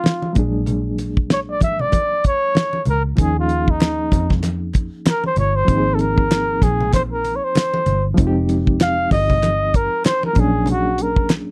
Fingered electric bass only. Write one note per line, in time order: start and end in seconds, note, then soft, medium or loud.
0.36 1.62 A#1 medium
1.62 2.38 G#1 medium
2.87 3.13 C#2 medium
3.18 4.08 D#2 loud
4.12 4.89 F2 loud
5.37 5.63 G1 medium
5.68 6.58 G#1 loud
6.61 7.38 A#1 medium
7.86 8.13 G1 medium
8.18 9.08 F1 loud
9.11 9.88 G1 medium
10.36 11.40 A#1 medium